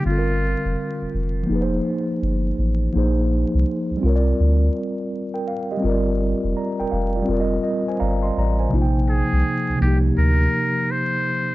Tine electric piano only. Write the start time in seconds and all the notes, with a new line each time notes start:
0.00 D3 G3
0.06 C4 F4
0.12 A4
0.18 A#4
1.43 F3 A#3
1.49 D#4 G#4
1.55 B4
1.62 C5
2.93 F3 A#3 D#4
2.97 G#4 C5
3.97 G3 C4
4.03 F4 A#4
4.09 C#5
4.16 D5
5.34 A#4 G5
5.48 F5
5.71 G4 D#5
5.77 G3 C4
5.83 F4 A#4
5.89 D5
6.57 D5 A#5
6.79 A#4 G5
6.91 F5
7.16 F4 D5
7.22 G3 C4
7.28 F4 A#4
7.34 D5
7.40 D#5
7.63 D#5
7.88 C5 G#5
8.00 D5 F5 A#5
8.23 D#5 C6
8.38 D5 A#5
8.59 C5 G#5
8.69 C3 F3 A#3
8.73 D#4 F4
8.82 G5
9.75 C3 F3
9.81 A#3 D#4
9.87 G4